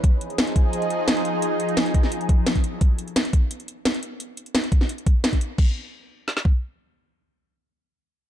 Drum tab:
CC |----------------|----------------|----------------|----------------|
HH |x-xxxxx-xxx-xxx-|x-xxxxx-xxx-xxx-|x-xxxxx-xxx-xxx-|x-xxxxx-xxx-xxx-|
SD |----o-------o---|----o--o----o---|----o-------o---|----o--o----o---|
BD |o-----o---------|------o---o--o--|o-----o---------|------o---o--o--|

CC |x---------------|----------------|
HH |----------------|----------------|
SD |--------oo------|----------------|
BD |o---------o-----|----------------|